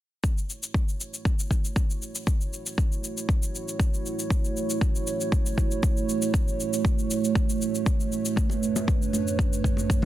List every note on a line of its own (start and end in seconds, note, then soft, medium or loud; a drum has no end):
0.23 10.05 A3 medium
0.23 8.33 E4 medium
0.23 8.33 F#4 medium
0.23 8.33 C#5 medium
0.23 kick loud
0.23 shaker medium
0.38 shaker soft
0.50 shaker soft
0.63 shaker medium
0.74 kick loud
0.74 shaker soft
0.89 shaker soft
1.01 shaker medium
1.14 shaker soft
1.25 kick loud
1.25 shaker soft
1.39 shaker medium
1.51 kick medium
1.51 shaker soft
1.65 shaker soft
1.76 kick loud
1.76 shaker medium
1.90 shaker soft
2.02 shaker soft
2.15 shaker medium
2.27 kick loud
2.27 shaker medium
2.41 shaker soft
2.53 shaker soft
2.66 shaker medium
2.78 kick loud
2.78 shaker soft
2.92 shaker medium
3.04 shaker medium
3.17 shaker soft
3.29 kick loud
3.29 shaker soft
3.43 shaker medium
3.55 shaker soft
3.68 shaker soft
3.80 kick loud
3.80 shaker medium
3.94 shaker soft
4.06 shaker soft
4.19 shaker medium
4.30 kick loud
4.30 shaker medium
4.45 shaker soft
4.57 shaker medium
4.70 shaker medium
4.81 kick loud
4.81 shaker soft
4.95 shaker medium
5.07 shaker medium
5.21 shaker soft
5.32 kick loud
5.32 shaker medium
5.46 shaker medium
5.58 kick medium
5.58 shaker soft
5.71 shaker medium
5.83 kick loud
5.83 shaker medium
5.97 shaker soft
6.09 shaker soft
6.22 shaker medium
6.34 kick loud
6.34 shaker medium
6.48 shaker soft
6.60 shaker medium
6.74 shaker medium
6.85 kick loud
6.85 shaker medium
6.99 shaker medium
7.11 shaker medium
7.24 shaker soft
7.35 kick loud
7.35 shaker soft
7.49 shaker medium
7.62 shaker soft
7.75 shaker medium
7.86 kick loud
7.86 shaker medium
8.00 shaker soft
8.12 shaker soft
8.26 shaker medium
8.36 10.05 F#2 medium
8.36 10.05 D4 medium
8.36 10.05 B4 medium
8.36 10.05 C#5 medium
8.36 kick loud
8.36 high conga medium
8.36 shaker medium
8.50 muted conga soft
8.50 shaker soft
8.63 shaker soft
8.76 high conga medium
8.76 shaker medium
8.87 kick loud
8.87 muted conga soft
8.87 shaker soft
9.02 shaker soft
9.13 muted conga soft
9.13 shaker medium
9.27 shaker soft
9.39 kick loud
9.39 muted conga soft
9.39 shaker soft
9.53 shaker medium
9.64 kick medium
9.64 shaker soft
9.77 muted conga soft
9.77 shaker soft
9.90 kick loud
9.90 shaker medium